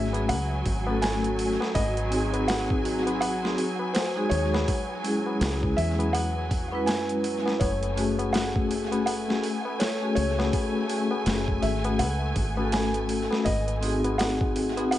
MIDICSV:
0, 0, Header, 1, 7, 480
1, 0, Start_track
1, 0, Key_signature, 3, "minor"
1, 0, Tempo, 731707
1, 1148, Time_signature, 4, 2, 24, 8
1, 9831, End_track
2, 0, Start_track
2, 0, Title_t, "Felt piano"
2, 0, Program_c, 0, 0
2, 0, Note_on_c, 0, 76, 89
2, 189, Note_on_c, 0, 78, 113
2, 194, Note_off_c, 0, 76, 0
2, 667, Note_on_c, 0, 80, 105
2, 683, Note_off_c, 0, 78, 0
2, 1024, Note_off_c, 0, 80, 0
2, 1146, Note_on_c, 0, 75, 106
2, 1601, Note_off_c, 0, 75, 0
2, 1625, Note_on_c, 0, 78, 104
2, 2093, Note_off_c, 0, 78, 0
2, 2103, Note_on_c, 0, 78, 115
2, 2559, Note_off_c, 0, 78, 0
2, 2581, Note_on_c, 0, 72, 90
2, 2817, Note_on_c, 0, 73, 111
2, 2832, Note_off_c, 0, 72, 0
2, 3782, Note_on_c, 0, 76, 93
2, 3811, Note_off_c, 0, 73, 0
2, 4021, Note_on_c, 0, 78, 107
2, 4032, Note_off_c, 0, 76, 0
2, 4478, Note_off_c, 0, 78, 0
2, 4502, Note_on_c, 0, 80, 95
2, 4862, Note_off_c, 0, 80, 0
2, 4982, Note_on_c, 0, 73, 91
2, 5462, Note_on_c, 0, 78, 102
2, 5479, Note_off_c, 0, 73, 0
2, 5932, Note_off_c, 0, 78, 0
2, 5942, Note_on_c, 0, 78, 99
2, 6425, Note_on_c, 0, 73, 85
2, 6440, Note_off_c, 0, 78, 0
2, 6650, Note_off_c, 0, 73, 0
2, 6660, Note_on_c, 0, 73, 108
2, 7623, Note_on_c, 0, 76, 83
2, 7653, Note_off_c, 0, 73, 0
2, 7849, Note_off_c, 0, 76, 0
2, 7865, Note_on_c, 0, 78, 97
2, 8347, Note_on_c, 0, 80, 93
2, 8361, Note_off_c, 0, 78, 0
2, 8704, Note_off_c, 0, 80, 0
2, 8822, Note_on_c, 0, 75, 95
2, 9279, Note_off_c, 0, 75, 0
2, 9303, Note_on_c, 0, 78, 95
2, 9759, Note_off_c, 0, 78, 0
2, 9781, Note_on_c, 0, 78, 99
2, 9831, Note_off_c, 0, 78, 0
2, 9831, End_track
3, 0, Start_track
3, 0, Title_t, "String section"
3, 0, Program_c, 1, 48
3, 0, Note_on_c, 1, 54, 85
3, 0, Note_on_c, 1, 80, 82
3, 4979, Note_off_c, 1, 80, 0
3, 4984, Note_on_c, 1, 57, 85
3, 4987, Note_on_c, 1, 80, 89
3, 5000, Note_off_c, 1, 54, 0
3, 9831, Note_off_c, 1, 57, 0
3, 9831, Note_off_c, 1, 80, 0
3, 9831, End_track
4, 0, Start_track
4, 0, Title_t, "Vibraphone"
4, 0, Program_c, 2, 11
4, 0, Note_on_c, 2, 68, 106
4, 66, Note_off_c, 2, 68, 0
4, 86, Note_on_c, 2, 57, 79
4, 93, Note_on_c, 2, 61, 75
4, 97, Note_on_c, 2, 66, 78
4, 103, Note_on_c, 2, 68, 90
4, 182, Note_off_c, 2, 57, 0
4, 185, Note_off_c, 2, 61, 0
4, 187, Note_off_c, 2, 66, 0
4, 190, Note_off_c, 2, 68, 0
4, 558, Note_on_c, 2, 57, 90
4, 569, Note_on_c, 2, 61, 86
4, 579, Note_on_c, 2, 66, 91
4, 591, Note_on_c, 2, 69, 101
4, 1130, Note_off_c, 2, 57, 0
4, 1135, Note_off_c, 2, 61, 0
4, 1140, Note_off_c, 2, 66, 0
4, 1146, Note_off_c, 2, 69, 0
4, 1376, Note_on_c, 2, 60, 96
4, 1387, Note_on_c, 2, 63, 93
4, 1397, Note_on_c, 2, 66, 84
4, 1408, Note_on_c, 2, 68, 113
4, 1971, Note_off_c, 2, 60, 0
4, 1976, Note_off_c, 2, 63, 0
4, 1981, Note_off_c, 2, 66, 0
4, 1987, Note_off_c, 2, 68, 0
4, 2004, Note_on_c, 2, 60, 91
4, 2010, Note_on_c, 2, 63, 85
4, 2015, Note_on_c, 2, 66, 79
4, 2019, Note_on_c, 2, 68, 103
4, 2066, Note_off_c, 2, 60, 0
4, 2069, Note_off_c, 2, 63, 0
4, 2071, Note_off_c, 2, 66, 0
4, 2073, Note_off_c, 2, 68, 0
4, 2244, Note_on_c, 2, 60, 93
4, 2249, Note_on_c, 2, 63, 84
4, 2254, Note_on_c, 2, 66, 86
4, 2259, Note_on_c, 2, 68, 109
4, 2306, Note_off_c, 2, 60, 0
4, 2308, Note_off_c, 2, 63, 0
4, 2311, Note_off_c, 2, 66, 0
4, 2313, Note_off_c, 2, 68, 0
4, 2724, Note_on_c, 2, 56, 91
4, 2728, Note_on_c, 2, 63, 86
4, 2733, Note_on_c, 2, 66, 84
4, 2738, Note_on_c, 2, 68, 101
4, 3053, Note_off_c, 2, 56, 0
4, 3055, Note_off_c, 2, 63, 0
4, 3057, Note_off_c, 2, 66, 0
4, 3060, Note_off_c, 2, 68, 0
4, 3293, Note_on_c, 2, 56, 100
4, 3303, Note_on_c, 2, 61, 86
4, 3315, Note_on_c, 2, 64, 84
4, 3325, Note_on_c, 2, 68, 102
4, 3889, Note_off_c, 2, 56, 0
4, 3894, Note_off_c, 2, 61, 0
4, 3900, Note_off_c, 2, 64, 0
4, 3905, Note_off_c, 2, 68, 0
4, 3924, Note_on_c, 2, 56, 84
4, 3930, Note_on_c, 2, 61, 73
4, 3935, Note_on_c, 2, 64, 74
4, 3939, Note_on_c, 2, 68, 89
4, 4021, Note_off_c, 2, 56, 0
4, 4024, Note_off_c, 2, 61, 0
4, 4026, Note_off_c, 2, 64, 0
4, 4028, Note_off_c, 2, 68, 0
4, 4395, Note_on_c, 2, 56, 90
4, 4405, Note_on_c, 2, 61, 87
4, 4416, Note_on_c, 2, 64, 82
4, 4427, Note_on_c, 2, 71, 103
4, 4968, Note_off_c, 2, 56, 0
4, 4973, Note_off_c, 2, 61, 0
4, 4979, Note_off_c, 2, 64, 0
4, 4984, Note_off_c, 2, 71, 0
4, 5210, Note_on_c, 2, 57, 101
4, 5219, Note_on_c, 2, 61, 91
4, 5230, Note_on_c, 2, 66, 92
4, 5240, Note_on_c, 2, 68, 109
4, 5808, Note_off_c, 2, 57, 0
4, 5812, Note_off_c, 2, 61, 0
4, 5818, Note_off_c, 2, 66, 0
4, 5823, Note_off_c, 2, 68, 0
4, 5843, Note_on_c, 2, 57, 87
4, 5847, Note_on_c, 2, 61, 82
4, 5854, Note_on_c, 2, 66, 86
4, 5858, Note_on_c, 2, 68, 94
4, 5905, Note_off_c, 2, 57, 0
4, 5907, Note_off_c, 2, 61, 0
4, 5911, Note_off_c, 2, 66, 0
4, 5913, Note_off_c, 2, 68, 0
4, 6083, Note_on_c, 2, 57, 99
4, 6087, Note_on_c, 2, 61, 88
4, 6095, Note_on_c, 2, 66, 89
4, 6099, Note_on_c, 2, 68, 109
4, 6145, Note_off_c, 2, 57, 0
4, 6147, Note_off_c, 2, 61, 0
4, 6151, Note_off_c, 2, 66, 0
4, 6153, Note_off_c, 2, 68, 0
4, 6558, Note_on_c, 2, 57, 94
4, 6568, Note_on_c, 2, 61, 84
4, 6578, Note_on_c, 2, 66, 84
4, 6588, Note_on_c, 2, 68, 96
4, 7118, Note_off_c, 2, 57, 0
4, 7123, Note_off_c, 2, 61, 0
4, 7128, Note_off_c, 2, 66, 0
4, 7131, Note_on_c, 2, 57, 93
4, 7133, Note_off_c, 2, 68, 0
4, 7141, Note_on_c, 2, 61, 86
4, 7151, Note_on_c, 2, 66, 84
4, 7162, Note_on_c, 2, 68, 114
4, 7728, Note_off_c, 2, 57, 0
4, 7733, Note_off_c, 2, 61, 0
4, 7738, Note_off_c, 2, 66, 0
4, 7744, Note_off_c, 2, 68, 0
4, 7765, Note_on_c, 2, 57, 84
4, 7772, Note_on_c, 2, 61, 74
4, 7776, Note_on_c, 2, 66, 76
4, 7780, Note_on_c, 2, 68, 93
4, 7861, Note_off_c, 2, 57, 0
4, 7865, Note_off_c, 2, 61, 0
4, 7867, Note_off_c, 2, 66, 0
4, 7869, Note_off_c, 2, 68, 0
4, 8236, Note_on_c, 2, 57, 98
4, 8247, Note_on_c, 2, 61, 93
4, 8257, Note_on_c, 2, 66, 85
4, 8268, Note_on_c, 2, 69, 101
4, 8809, Note_off_c, 2, 57, 0
4, 8814, Note_off_c, 2, 61, 0
4, 8819, Note_off_c, 2, 66, 0
4, 8824, Note_off_c, 2, 69, 0
4, 9055, Note_on_c, 2, 60, 98
4, 9065, Note_on_c, 2, 63, 88
4, 9076, Note_on_c, 2, 66, 89
4, 9087, Note_on_c, 2, 68, 115
4, 9650, Note_off_c, 2, 60, 0
4, 9655, Note_off_c, 2, 63, 0
4, 9661, Note_off_c, 2, 66, 0
4, 9666, Note_off_c, 2, 68, 0
4, 9687, Note_on_c, 2, 60, 95
4, 9692, Note_on_c, 2, 63, 83
4, 9697, Note_on_c, 2, 66, 90
4, 9702, Note_on_c, 2, 68, 105
4, 9747, Note_off_c, 2, 60, 0
4, 9750, Note_off_c, 2, 63, 0
4, 9752, Note_off_c, 2, 66, 0
4, 9755, Note_off_c, 2, 68, 0
4, 9831, End_track
5, 0, Start_track
5, 0, Title_t, "Fingered electric bass"
5, 0, Program_c, 3, 33
5, 0, Note_on_c, 3, 32, 93
5, 189, Note_on_c, 3, 37, 89
5, 199, Note_off_c, 3, 32, 0
5, 405, Note_off_c, 3, 37, 0
5, 430, Note_on_c, 3, 32, 85
5, 1025, Note_off_c, 3, 32, 0
5, 1150, Note_on_c, 3, 32, 96
5, 2330, Note_off_c, 3, 32, 0
5, 2827, Note_on_c, 3, 39, 88
5, 3044, Note_off_c, 3, 39, 0
5, 3546, Note_on_c, 3, 37, 95
5, 3764, Note_off_c, 3, 37, 0
5, 3786, Note_on_c, 3, 40, 87
5, 4509, Note_off_c, 3, 40, 0
5, 4509, Note_on_c, 3, 42, 98
5, 4970, Note_off_c, 3, 42, 0
5, 4990, Note_on_c, 3, 30, 100
5, 6171, Note_off_c, 3, 30, 0
5, 6669, Note_on_c, 3, 37, 85
5, 6885, Note_off_c, 3, 37, 0
5, 7386, Note_on_c, 3, 30, 89
5, 7604, Note_off_c, 3, 30, 0
5, 7625, Note_on_c, 3, 32, 92
5, 7865, Note_on_c, 3, 37, 94
5, 7875, Note_off_c, 3, 32, 0
5, 8083, Note_off_c, 3, 37, 0
5, 8107, Note_on_c, 3, 32, 81
5, 8703, Note_off_c, 3, 32, 0
5, 8827, Note_on_c, 3, 32, 101
5, 9831, Note_off_c, 3, 32, 0
5, 9831, End_track
6, 0, Start_track
6, 0, Title_t, "Tabla"
6, 85, Note_on_c, 9, 60, 75
6, 151, Note_off_c, 9, 60, 0
6, 186, Note_on_c, 9, 60, 61
6, 252, Note_off_c, 9, 60, 0
6, 331, Note_on_c, 9, 60, 45
6, 396, Note_off_c, 9, 60, 0
6, 567, Note_on_c, 9, 60, 76
6, 633, Note_off_c, 9, 60, 0
6, 667, Note_on_c, 9, 60, 67
6, 732, Note_off_c, 9, 60, 0
6, 805, Note_on_c, 9, 60, 38
6, 870, Note_off_c, 9, 60, 0
6, 1051, Note_on_c, 9, 60, 80
6, 1117, Note_off_c, 9, 60, 0
6, 1146, Note_on_c, 9, 60, 72
6, 1211, Note_off_c, 9, 60, 0
6, 1292, Note_on_c, 9, 60, 42
6, 1358, Note_off_c, 9, 60, 0
6, 1531, Note_on_c, 9, 60, 79
6, 1596, Note_off_c, 9, 60, 0
6, 1634, Note_on_c, 9, 60, 70
6, 1699, Note_off_c, 9, 60, 0
6, 1774, Note_on_c, 9, 60, 41
6, 1840, Note_off_c, 9, 60, 0
6, 2008, Note_on_c, 9, 60, 82
6, 2074, Note_off_c, 9, 60, 0
6, 2102, Note_on_c, 9, 60, 72
6, 2168, Note_off_c, 9, 60, 0
6, 2255, Note_on_c, 9, 60, 42
6, 2321, Note_off_c, 9, 60, 0
6, 2488, Note_on_c, 9, 60, 86
6, 2554, Note_off_c, 9, 60, 0
6, 2589, Note_on_c, 9, 60, 69
6, 2655, Note_off_c, 9, 60, 0
6, 2730, Note_on_c, 9, 60, 40
6, 2796, Note_off_c, 9, 60, 0
6, 2976, Note_on_c, 9, 60, 87
6, 3042, Note_off_c, 9, 60, 0
6, 3072, Note_on_c, 9, 60, 59
6, 3137, Note_off_c, 9, 60, 0
6, 3207, Note_on_c, 9, 60, 37
6, 3273, Note_off_c, 9, 60, 0
6, 3453, Note_on_c, 9, 60, 71
6, 3518, Note_off_c, 9, 60, 0
6, 3549, Note_on_c, 9, 60, 75
6, 3614, Note_off_c, 9, 60, 0
6, 3686, Note_on_c, 9, 60, 39
6, 3752, Note_off_c, 9, 60, 0
6, 3928, Note_on_c, 9, 60, 81
6, 3994, Note_off_c, 9, 60, 0
6, 4029, Note_on_c, 9, 60, 65
6, 4095, Note_off_c, 9, 60, 0
6, 4172, Note_on_c, 9, 60, 43
6, 4238, Note_off_c, 9, 60, 0
6, 4410, Note_on_c, 9, 60, 77
6, 4475, Note_off_c, 9, 60, 0
6, 4500, Note_on_c, 9, 60, 70
6, 4566, Note_off_c, 9, 60, 0
6, 4647, Note_on_c, 9, 60, 39
6, 4713, Note_off_c, 9, 60, 0
6, 4891, Note_on_c, 9, 60, 70
6, 4957, Note_off_c, 9, 60, 0
6, 4990, Note_on_c, 9, 60, 66
6, 5055, Note_off_c, 9, 60, 0
6, 5135, Note_on_c, 9, 60, 41
6, 5201, Note_off_c, 9, 60, 0
6, 5370, Note_on_c, 9, 60, 71
6, 5436, Note_off_c, 9, 60, 0
6, 5467, Note_on_c, 9, 60, 70
6, 5533, Note_off_c, 9, 60, 0
6, 5615, Note_on_c, 9, 60, 35
6, 5680, Note_off_c, 9, 60, 0
6, 5849, Note_on_c, 9, 60, 82
6, 5915, Note_off_c, 9, 60, 0
6, 5944, Note_on_c, 9, 60, 71
6, 6010, Note_off_c, 9, 60, 0
6, 6091, Note_on_c, 9, 60, 37
6, 6156, Note_off_c, 9, 60, 0
6, 6331, Note_on_c, 9, 60, 81
6, 6397, Note_off_c, 9, 60, 0
6, 6428, Note_on_c, 9, 60, 61
6, 6494, Note_off_c, 9, 60, 0
6, 6571, Note_on_c, 9, 60, 35
6, 6637, Note_off_c, 9, 60, 0
6, 6813, Note_on_c, 9, 60, 78
6, 6879, Note_off_c, 9, 60, 0
6, 6904, Note_on_c, 9, 60, 64
6, 6969, Note_off_c, 9, 60, 0
6, 7051, Note_on_c, 9, 60, 41
6, 7117, Note_off_c, 9, 60, 0
6, 7286, Note_on_c, 9, 60, 78
6, 7352, Note_off_c, 9, 60, 0
6, 7387, Note_on_c, 9, 60, 64
6, 7452, Note_off_c, 9, 60, 0
6, 7532, Note_on_c, 9, 60, 35
6, 7597, Note_off_c, 9, 60, 0
6, 7771, Note_on_c, 9, 60, 85
6, 7836, Note_off_c, 9, 60, 0
6, 7868, Note_on_c, 9, 60, 67
6, 7934, Note_off_c, 9, 60, 0
6, 8014, Note_on_c, 9, 60, 37
6, 8079, Note_off_c, 9, 60, 0
6, 8246, Note_on_c, 9, 60, 74
6, 8312, Note_off_c, 9, 60, 0
6, 8352, Note_on_c, 9, 60, 66
6, 8417, Note_off_c, 9, 60, 0
6, 8489, Note_on_c, 9, 60, 37
6, 8555, Note_off_c, 9, 60, 0
6, 8728, Note_on_c, 9, 60, 77
6, 8793, Note_off_c, 9, 60, 0
6, 8829, Note_on_c, 9, 60, 53
6, 8895, Note_off_c, 9, 60, 0
6, 8968, Note_on_c, 9, 60, 39
6, 9034, Note_off_c, 9, 60, 0
6, 9212, Note_on_c, 9, 60, 73
6, 9278, Note_off_c, 9, 60, 0
6, 9307, Note_on_c, 9, 60, 59
6, 9373, Note_off_c, 9, 60, 0
6, 9452, Note_on_c, 9, 60, 33
6, 9518, Note_off_c, 9, 60, 0
6, 9690, Note_on_c, 9, 60, 74
6, 9755, Note_off_c, 9, 60, 0
6, 9791, Note_on_c, 9, 60, 61
6, 9831, Note_off_c, 9, 60, 0
6, 9831, End_track
7, 0, Start_track
7, 0, Title_t, "Drums"
7, 94, Note_on_c, 9, 42, 43
7, 160, Note_off_c, 9, 42, 0
7, 191, Note_on_c, 9, 46, 84
7, 257, Note_off_c, 9, 46, 0
7, 430, Note_on_c, 9, 36, 90
7, 430, Note_on_c, 9, 46, 67
7, 496, Note_off_c, 9, 36, 0
7, 496, Note_off_c, 9, 46, 0
7, 672, Note_on_c, 9, 46, 88
7, 681, Note_on_c, 9, 38, 116
7, 737, Note_off_c, 9, 46, 0
7, 746, Note_off_c, 9, 38, 0
7, 816, Note_on_c, 9, 42, 42
7, 881, Note_off_c, 9, 42, 0
7, 911, Note_on_c, 9, 46, 69
7, 976, Note_off_c, 9, 46, 0
7, 1064, Note_on_c, 9, 38, 43
7, 1129, Note_off_c, 9, 38, 0
7, 1149, Note_on_c, 9, 46, 84
7, 1150, Note_on_c, 9, 36, 102
7, 1215, Note_off_c, 9, 46, 0
7, 1216, Note_off_c, 9, 36, 0
7, 1293, Note_on_c, 9, 42, 42
7, 1358, Note_off_c, 9, 42, 0
7, 1390, Note_on_c, 9, 46, 70
7, 1455, Note_off_c, 9, 46, 0
7, 1533, Note_on_c, 9, 42, 43
7, 1598, Note_off_c, 9, 42, 0
7, 1629, Note_on_c, 9, 46, 78
7, 1638, Note_on_c, 9, 38, 102
7, 1695, Note_off_c, 9, 46, 0
7, 1704, Note_off_c, 9, 38, 0
7, 1773, Note_on_c, 9, 36, 97
7, 1839, Note_off_c, 9, 36, 0
7, 1871, Note_on_c, 9, 46, 63
7, 1937, Note_off_c, 9, 46, 0
7, 2014, Note_on_c, 9, 42, 43
7, 2080, Note_off_c, 9, 42, 0
7, 2111, Note_on_c, 9, 46, 88
7, 2176, Note_off_c, 9, 46, 0
7, 2263, Note_on_c, 9, 38, 45
7, 2329, Note_off_c, 9, 38, 0
7, 2349, Note_on_c, 9, 46, 66
7, 2415, Note_off_c, 9, 46, 0
7, 2589, Note_on_c, 9, 46, 82
7, 2598, Note_on_c, 9, 38, 114
7, 2655, Note_off_c, 9, 46, 0
7, 2664, Note_off_c, 9, 38, 0
7, 2830, Note_on_c, 9, 46, 64
7, 2895, Note_off_c, 9, 46, 0
7, 2981, Note_on_c, 9, 38, 52
7, 3047, Note_off_c, 9, 38, 0
7, 3070, Note_on_c, 9, 36, 110
7, 3070, Note_on_c, 9, 46, 80
7, 3135, Note_off_c, 9, 36, 0
7, 3136, Note_off_c, 9, 46, 0
7, 3309, Note_on_c, 9, 46, 69
7, 3375, Note_off_c, 9, 46, 0
7, 3550, Note_on_c, 9, 46, 81
7, 3559, Note_on_c, 9, 38, 111
7, 3616, Note_off_c, 9, 46, 0
7, 3625, Note_off_c, 9, 38, 0
7, 3693, Note_on_c, 9, 36, 95
7, 3759, Note_off_c, 9, 36, 0
7, 3791, Note_on_c, 9, 46, 64
7, 3857, Note_off_c, 9, 46, 0
7, 3936, Note_on_c, 9, 42, 42
7, 4001, Note_off_c, 9, 42, 0
7, 4031, Note_on_c, 9, 46, 82
7, 4097, Note_off_c, 9, 46, 0
7, 4270, Note_on_c, 9, 36, 93
7, 4271, Note_on_c, 9, 46, 62
7, 4335, Note_off_c, 9, 36, 0
7, 4336, Note_off_c, 9, 46, 0
7, 4510, Note_on_c, 9, 46, 91
7, 4519, Note_on_c, 9, 38, 117
7, 4575, Note_off_c, 9, 46, 0
7, 4584, Note_off_c, 9, 38, 0
7, 4653, Note_on_c, 9, 42, 44
7, 4719, Note_off_c, 9, 42, 0
7, 4750, Note_on_c, 9, 46, 71
7, 4815, Note_off_c, 9, 46, 0
7, 4905, Note_on_c, 9, 38, 44
7, 4970, Note_off_c, 9, 38, 0
7, 4990, Note_on_c, 9, 36, 109
7, 4990, Note_on_c, 9, 46, 81
7, 5055, Note_off_c, 9, 36, 0
7, 5056, Note_off_c, 9, 46, 0
7, 5134, Note_on_c, 9, 42, 43
7, 5200, Note_off_c, 9, 42, 0
7, 5231, Note_on_c, 9, 46, 69
7, 5297, Note_off_c, 9, 46, 0
7, 5374, Note_on_c, 9, 42, 45
7, 5440, Note_off_c, 9, 42, 0
7, 5471, Note_on_c, 9, 46, 80
7, 5481, Note_on_c, 9, 38, 108
7, 5537, Note_off_c, 9, 46, 0
7, 5546, Note_off_c, 9, 38, 0
7, 5613, Note_on_c, 9, 36, 96
7, 5679, Note_off_c, 9, 36, 0
7, 5712, Note_on_c, 9, 46, 68
7, 5777, Note_off_c, 9, 46, 0
7, 5854, Note_on_c, 9, 42, 43
7, 5920, Note_off_c, 9, 42, 0
7, 5950, Note_on_c, 9, 46, 88
7, 6016, Note_off_c, 9, 46, 0
7, 6103, Note_on_c, 9, 38, 48
7, 6169, Note_off_c, 9, 38, 0
7, 6189, Note_on_c, 9, 46, 63
7, 6255, Note_off_c, 9, 46, 0
7, 6429, Note_on_c, 9, 46, 88
7, 6438, Note_on_c, 9, 38, 115
7, 6494, Note_off_c, 9, 46, 0
7, 6503, Note_off_c, 9, 38, 0
7, 6668, Note_on_c, 9, 46, 66
7, 6734, Note_off_c, 9, 46, 0
7, 6820, Note_on_c, 9, 38, 50
7, 6886, Note_off_c, 9, 38, 0
7, 6909, Note_on_c, 9, 36, 110
7, 6909, Note_on_c, 9, 46, 83
7, 6974, Note_off_c, 9, 36, 0
7, 6974, Note_off_c, 9, 46, 0
7, 7147, Note_on_c, 9, 46, 69
7, 7212, Note_off_c, 9, 46, 0
7, 7387, Note_on_c, 9, 46, 85
7, 7396, Note_on_c, 9, 38, 119
7, 7453, Note_off_c, 9, 46, 0
7, 7462, Note_off_c, 9, 38, 0
7, 7530, Note_on_c, 9, 36, 98
7, 7596, Note_off_c, 9, 36, 0
7, 7626, Note_on_c, 9, 46, 63
7, 7692, Note_off_c, 9, 46, 0
7, 7769, Note_on_c, 9, 42, 44
7, 7835, Note_off_c, 9, 42, 0
7, 7867, Note_on_c, 9, 46, 84
7, 7932, Note_off_c, 9, 46, 0
7, 8107, Note_on_c, 9, 36, 91
7, 8107, Note_on_c, 9, 46, 68
7, 8172, Note_off_c, 9, 46, 0
7, 8173, Note_off_c, 9, 36, 0
7, 8347, Note_on_c, 9, 46, 83
7, 8356, Note_on_c, 9, 38, 114
7, 8412, Note_off_c, 9, 46, 0
7, 8421, Note_off_c, 9, 38, 0
7, 8491, Note_on_c, 9, 42, 46
7, 8556, Note_off_c, 9, 42, 0
7, 8587, Note_on_c, 9, 46, 66
7, 8652, Note_off_c, 9, 46, 0
7, 8741, Note_on_c, 9, 38, 44
7, 8807, Note_off_c, 9, 38, 0
7, 8827, Note_on_c, 9, 46, 78
7, 8828, Note_on_c, 9, 36, 104
7, 8893, Note_off_c, 9, 46, 0
7, 8894, Note_off_c, 9, 36, 0
7, 8973, Note_on_c, 9, 42, 43
7, 9039, Note_off_c, 9, 42, 0
7, 9070, Note_on_c, 9, 46, 73
7, 9135, Note_off_c, 9, 46, 0
7, 9213, Note_on_c, 9, 42, 43
7, 9278, Note_off_c, 9, 42, 0
7, 9310, Note_on_c, 9, 46, 81
7, 9320, Note_on_c, 9, 38, 119
7, 9376, Note_off_c, 9, 46, 0
7, 9385, Note_off_c, 9, 38, 0
7, 9452, Note_on_c, 9, 36, 96
7, 9517, Note_off_c, 9, 36, 0
7, 9550, Note_on_c, 9, 46, 64
7, 9616, Note_off_c, 9, 46, 0
7, 9692, Note_on_c, 9, 42, 41
7, 9758, Note_off_c, 9, 42, 0
7, 9789, Note_on_c, 9, 46, 86
7, 9831, Note_off_c, 9, 46, 0
7, 9831, End_track
0, 0, End_of_file